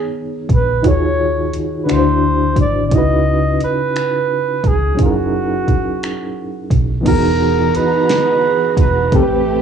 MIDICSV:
0, 0, Header, 1, 7, 480
1, 0, Start_track
1, 0, Tempo, 689655
1, 589, Time_signature, 6, 3, 24, 8
1, 6694, End_track
2, 0, Start_track
2, 0, Title_t, "Flugelhorn"
2, 0, Program_c, 0, 56
2, 0, Note_on_c, 0, 68, 76
2, 85, Note_off_c, 0, 68, 0
2, 379, Note_on_c, 0, 71, 76
2, 588, Note_off_c, 0, 71, 0
2, 615, Note_on_c, 0, 73, 81
2, 1114, Note_off_c, 0, 73, 0
2, 1278, Note_on_c, 0, 71, 61
2, 1334, Note_on_c, 0, 72, 91
2, 1345, Note_off_c, 0, 71, 0
2, 1802, Note_off_c, 0, 72, 0
2, 1815, Note_on_c, 0, 74, 85
2, 1997, Note_off_c, 0, 74, 0
2, 1997, Note_on_c, 0, 74, 69
2, 2050, Note_on_c, 0, 75, 98
2, 2060, Note_off_c, 0, 74, 0
2, 2519, Note_off_c, 0, 75, 0
2, 2534, Note_on_c, 0, 71, 87
2, 3250, Note_on_c, 0, 68, 80
2, 3260, Note_off_c, 0, 71, 0
2, 3479, Note_off_c, 0, 68, 0
2, 3490, Note_on_c, 0, 66, 75
2, 4651, Note_off_c, 0, 66, 0
2, 4926, Note_on_c, 0, 70, 104
2, 5370, Note_off_c, 0, 70, 0
2, 5404, Note_on_c, 0, 71, 101
2, 6089, Note_off_c, 0, 71, 0
2, 6129, Note_on_c, 0, 71, 88
2, 6374, Note_on_c, 0, 67, 74
2, 6384, Note_off_c, 0, 71, 0
2, 6694, Note_off_c, 0, 67, 0
2, 6694, End_track
3, 0, Start_track
3, 0, Title_t, "String section"
3, 0, Program_c, 1, 48
3, 4909, Note_on_c, 1, 68, 63
3, 4910, Note_on_c, 1, 52, 68
3, 4912, Note_on_c, 1, 82, 76
3, 4914, Note_on_c, 1, 66, 59
3, 4915, Note_on_c, 1, 63, 63
3, 6335, Note_off_c, 1, 52, 0
3, 6335, Note_off_c, 1, 68, 0
3, 6336, Note_off_c, 1, 82, 0
3, 6337, Note_off_c, 1, 63, 0
3, 6337, Note_off_c, 1, 66, 0
3, 6346, Note_on_c, 1, 60, 68
3, 6347, Note_on_c, 1, 57, 69
3, 6348, Note_on_c, 1, 67, 69
3, 6694, Note_off_c, 1, 57, 0
3, 6694, Note_off_c, 1, 60, 0
3, 6694, Note_off_c, 1, 67, 0
3, 6694, End_track
4, 0, Start_track
4, 0, Title_t, "Reed electric piano"
4, 0, Program_c, 2, 4
4, 0, Control_c, 2, 64, 127
4, 0, Note_on_c, 2, 51, 52
4, 0, Note_on_c, 2, 59, 50
4, 0, Note_on_c, 2, 63, 45
4, 0, Note_on_c, 2, 68, 47
4, 0, Note_on_c, 2, 73, 57
4, 546, Note_off_c, 2, 51, 0
4, 556, Note_off_c, 2, 59, 0
4, 564, Note_off_c, 2, 63, 0
4, 574, Note_off_c, 2, 68, 0
4, 575, Note_on_c, 2, 51, 53
4, 580, Note_on_c, 2, 63, 52
4, 583, Note_off_c, 2, 73, 0
4, 589, Note_on_c, 2, 65, 50
4, 595, Note_on_c, 2, 66, 49
4, 599, Control_c, 2, 64, 0
4, 604, Note_on_c, 2, 68, 51
4, 610, Note_on_c, 2, 73, 57
4, 735, Control_c, 2, 64, 127
4, 1292, Note_on_c, 2, 50, 59
4, 1302, Note_off_c, 2, 51, 0
4, 1302, Note_on_c, 2, 62, 55
4, 1304, Note_off_c, 2, 63, 0
4, 1309, Note_off_c, 2, 65, 0
4, 1312, Note_off_c, 2, 66, 0
4, 1314, Note_on_c, 2, 64, 54
4, 1316, Note_off_c, 2, 68, 0
4, 1317, Control_c, 2, 64, 0
4, 1320, Note_off_c, 2, 73, 0
4, 1321, Note_on_c, 2, 66, 57
4, 1333, Note_on_c, 2, 71, 52
4, 1366, Note_off_c, 2, 71, 0
4, 1379, Note_on_c, 2, 72, 64
4, 1442, Control_c, 2, 64, 127
4, 1999, Note_on_c, 2, 49, 51
4, 2013, Note_on_c, 2, 61, 53
4, 2020, Note_off_c, 2, 50, 0
4, 2025, Note_off_c, 2, 62, 0
4, 2028, Note_on_c, 2, 63, 50
4, 2031, Note_off_c, 2, 64, 0
4, 2035, Note_off_c, 2, 66, 0
4, 2039, Control_c, 2, 64, 0
4, 2043, Note_on_c, 2, 64, 45
4, 2056, Note_on_c, 2, 66, 51
4, 2064, Note_off_c, 2, 72, 0
4, 2073, Note_on_c, 2, 71, 61
4, 2181, Control_c, 2, 64, 127
4, 3426, Note_off_c, 2, 49, 0
4, 3433, Note_off_c, 2, 61, 0
4, 3441, Note_off_c, 2, 63, 0
4, 3442, Note_on_c, 2, 54, 52
4, 3448, Note_off_c, 2, 64, 0
4, 3455, Note_off_c, 2, 66, 0
4, 3456, Note_on_c, 2, 61, 51
4, 3463, Note_off_c, 2, 71, 0
4, 3471, Note_on_c, 2, 63, 44
4, 3476, Control_c, 2, 64, 0
4, 3489, Note_on_c, 2, 64, 48
4, 3503, Note_on_c, 2, 68, 55
4, 3519, Note_on_c, 2, 70, 61
4, 3593, Control_c, 2, 64, 127
4, 4868, Note_off_c, 2, 54, 0
4, 4875, Note_off_c, 2, 61, 0
4, 4878, Note_on_c, 2, 52, 58
4, 4882, Note_off_c, 2, 63, 0
4, 4891, Note_off_c, 2, 64, 0
4, 4893, Note_on_c, 2, 59, 54
4, 4898, Note_off_c, 2, 68, 0
4, 4906, Note_off_c, 2, 70, 0
4, 4909, Note_on_c, 2, 63, 55
4, 4919, Control_c, 2, 64, 0
4, 4925, Note_on_c, 2, 66, 56
4, 4938, Note_on_c, 2, 68, 56
4, 5021, Control_c, 2, 64, 127
4, 6305, Note_off_c, 2, 52, 0
4, 6313, Note_off_c, 2, 59, 0
4, 6321, Note_off_c, 2, 63, 0
4, 6329, Note_off_c, 2, 66, 0
4, 6335, Note_off_c, 2, 68, 0
4, 6339, Note_on_c, 2, 45, 61
4, 6348, Note_on_c, 2, 57, 52
4, 6354, Note_on_c, 2, 60, 55
4, 6358, Control_c, 2, 64, 0
4, 6367, Note_on_c, 2, 67, 57
4, 6376, Note_on_c, 2, 69, 60
4, 6408, Note_off_c, 2, 69, 0
4, 6420, Note_on_c, 2, 71, 67
4, 6466, Control_c, 2, 64, 127
4, 6694, Note_off_c, 2, 45, 0
4, 6694, Note_off_c, 2, 57, 0
4, 6694, Note_off_c, 2, 60, 0
4, 6694, Note_off_c, 2, 67, 0
4, 6694, Note_off_c, 2, 71, 0
4, 6694, End_track
5, 0, Start_track
5, 0, Title_t, "Fingered electric bass"
5, 0, Program_c, 3, 33
5, 350, Note_on_c, 3, 34, 78
5, 565, Note_off_c, 3, 34, 0
5, 595, Note_on_c, 3, 39, 90
5, 1044, Note_off_c, 3, 39, 0
5, 1331, Note_on_c, 3, 38, 96
5, 1772, Note_off_c, 3, 38, 0
5, 1790, Note_on_c, 3, 32, 76
5, 2036, Note_off_c, 3, 32, 0
5, 2036, Note_on_c, 3, 37, 84
5, 2484, Note_off_c, 3, 37, 0
5, 3236, Note_on_c, 3, 37, 65
5, 3477, Note_off_c, 3, 37, 0
5, 3477, Note_on_c, 3, 30, 85
5, 3925, Note_off_c, 3, 30, 0
5, 4675, Note_on_c, 3, 35, 76
5, 4888, Note_off_c, 3, 35, 0
5, 4922, Note_on_c, 3, 28, 98
5, 5368, Note_off_c, 3, 28, 0
5, 6109, Note_on_c, 3, 28, 66
5, 6325, Note_off_c, 3, 28, 0
5, 6356, Note_on_c, 3, 33, 95
5, 6694, Note_off_c, 3, 33, 0
5, 6694, End_track
6, 0, Start_track
6, 0, Title_t, "Muted fingered electric bass strokes"
6, 1089, Note_on_c, 9, 29, 39
6, 1159, Note_off_c, 9, 29, 0
6, 2527, Note_on_c, 9, 29, 43
6, 2597, Note_off_c, 9, 29, 0
6, 3962, Note_on_c, 9, 29, 39
6, 4032, Note_off_c, 9, 29, 0
6, 5410, Note_on_c, 9, 29, 45
6, 5480, Note_off_c, 9, 29, 0
6, 6694, End_track
7, 0, Start_track
7, 0, Title_t, "Drums"
7, 342, Note_on_c, 9, 36, 85
7, 345, Note_on_c, 9, 42, 56
7, 412, Note_off_c, 9, 36, 0
7, 415, Note_off_c, 9, 42, 0
7, 586, Note_on_c, 9, 42, 69
7, 588, Note_on_c, 9, 36, 99
7, 656, Note_off_c, 9, 42, 0
7, 657, Note_off_c, 9, 36, 0
7, 1069, Note_on_c, 9, 42, 48
7, 1139, Note_off_c, 9, 42, 0
7, 1315, Note_on_c, 9, 42, 55
7, 1320, Note_on_c, 9, 26, 97
7, 1385, Note_off_c, 9, 42, 0
7, 1389, Note_off_c, 9, 26, 0
7, 1783, Note_on_c, 9, 36, 83
7, 1785, Note_on_c, 9, 42, 65
7, 1853, Note_off_c, 9, 36, 0
7, 1854, Note_off_c, 9, 42, 0
7, 2029, Note_on_c, 9, 42, 78
7, 2030, Note_on_c, 9, 36, 92
7, 2099, Note_off_c, 9, 42, 0
7, 2100, Note_off_c, 9, 36, 0
7, 2509, Note_on_c, 9, 42, 52
7, 2579, Note_off_c, 9, 42, 0
7, 2755, Note_on_c, 9, 42, 57
7, 2760, Note_on_c, 9, 26, 92
7, 2825, Note_off_c, 9, 42, 0
7, 2829, Note_off_c, 9, 26, 0
7, 3227, Note_on_c, 9, 36, 84
7, 3228, Note_on_c, 9, 42, 65
7, 3297, Note_off_c, 9, 36, 0
7, 3298, Note_off_c, 9, 42, 0
7, 3470, Note_on_c, 9, 42, 69
7, 3472, Note_on_c, 9, 36, 95
7, 3540, Note_off_c, 9, 42, 0
7, 3542, Note_off_c, 9, 36, 0
7, 3953, Note_on_c, 9, 36, 59
7, 3954, Note_on_c, 9, 42, 53
7, 4022, Note_off_c, 9, 36, 0
7, 4024, Note_off_c, 9, 42, 0
7, 4198, Note_on_c, 9, 42, 52
7, 4203, Note_on_c, 9, 26, 92
7, 4268, Note_off_c, 9, 42, 0
7, 4273, Note_off_c, 9, 26, 0
7, 4667, Note_on_c, 9, 36, 77
7, 4670, Note_on_c, 9, 42, 63
7, 4736, Note_off_c, 9, 36, 0
7, 4740, Note_off_c, 9, 42, 0
7, 4912, Note_on_c, 9, 36, 102
7, 4913, Note_on_c, 9, 42, 80
7, 4913, Note_on_c, 9, 49, 93
7, 4982, Note_off_c, 9, 36, 0
7, 4982, Note_off_c, 9, 42, 0
7, 4982, Note_off_c, 9, 49, 0
7, 5392, Note_on_c, 9, 42, 50
7, 5461, Note_off_c, 9, 42, 0
7, 5633, Note_on_c, 9, 42, 68
7, 5638, Note_on_c, 9, 38, 111
7, 5703, Note_off_c, 9, 42, 0
7, 5707, Note_off_c, 9, 38, 0
7, 6103, Note_on_c, 9, 36, 86
7, 6107, Note_on_c, 9, 42, 78
7, 6173, Note_off_c, 9, 36, 0
7, 6176, Note_off_c, 9, 42, 0
7, 6349, Note_on_c, 9, 36, 108
7, 6349, Note_on_c, 9, 42, 83
7, 6419, Note_off_c, 9, 36, 0
7, 6419, Note_off_c, 9, 42, 0
7, 6694, End_track
0, 0, End_of_file